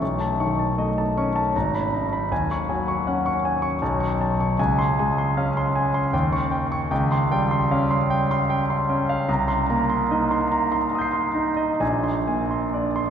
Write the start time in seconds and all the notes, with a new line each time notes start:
0.02 B1 C#6
0.20 A5
0.40 D#3 C#6
0.59 A5
0.78 A3 D#5
0.98 A5
1.17 C#4 C#6
1.36 A5
1.56 G#1 A#5
1.75 B5
1.94 D#4 A#5
2.13 B5
2.31 D#2 G#5
2.51 C#6
2.69 F#3 G#5
2.88 C#6
3.07 C#4 F#5
3.26 C#6
3.45 G#5
3.62 C#6
3.82 B1 A5
4.00 C#6
4.21 A5
4.40 C#6
4.59 C#2 G#5
4.79 C6
4.99 G#3 G#5
5.18 C6
5.37 C#4 F5
5.57 C6
5.76 G#5
5.94 C6
6.13 D#2 G5
6.33 C#6
6.51 G5
6.72 C#6
6.91 C#2 G5
7.12 C6
7.32 G3 G5
7.51 C6
7.71 C#4 F5
7.91 C6
8.10 G5
8.31 C6
8.50 G5
8.70 C6
8.89 C#4 G5
9.09 F5
9.29 C2 A#5
9.48 C6
9.70 A#3 A#5
9.90 C6
10.11 D#4 D#5
10.31 C6
10.52 A#5
10.72 C6
10.92 A#5 D#6
10.99 G6 C7
11.13 C6
11.34 D#4 A#5
11.56 D#5
11.80 A#1 G#5
12.03 C6
12.27 A#3 G#5
12.51 C6
12.74 D4 D5
12.96 C6